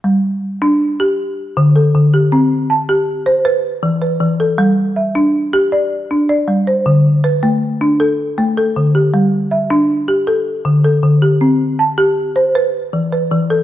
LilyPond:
<<
  \new Staff \with { instrumentName = "Marimba" } { \time 12/8 \key g \major \tempo 4. = 106 r1 r8 a'4 g'8~ | g'8 r8 a''4. r8 b'4. b'4 a'8~ | a'8 r8 e''4. r8 d''4. d''4 c''8~ | c''8 r8 b'4. r8 a'4. a'4 g'8~ |
g'8 r8 e''4. r8 a'4. a'4 g'8~ | g'8 r8 a''4. r8 b'4. b'4 a'8 | }
  \new Staff \with { instrumentName = "Marimba" } { \time 12/8 \key g \major g4 r8 d'4 g'8 r4 d4 d4 | c'4 r8 g'4 c''8 r4 e4 e4 | g4 r8 d'4 g'4 r8 d'4 g4 | d4 r8 a4 d'4 r8 a4 d4 |
g4 r8 d'4 g'8 r4 d4 d4 | c'4 r8 g'4 c''8 r4 e4 e4 | }
>>